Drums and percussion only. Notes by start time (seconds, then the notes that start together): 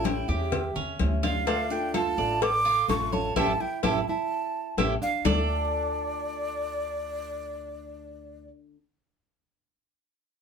0.05 cowbell, high conga
0.29 high conga
0.52 cowbell, high conga, low conga
0.76 high conga, low conga
0.99 cowbell, high conga
1.23 cowbell, high conga
1.47 cowbell, high conga
1.71 high conga
1.94 cowbell, high conga
2.42 cowbell, high conga
2.66 high conga
2.89 cowbell, high conga
3.13 high conga
3.36 cowbell, high conga
3.83 cowbell, high conga
4.78 cowbell, high conga
5.25 low bongo, low conga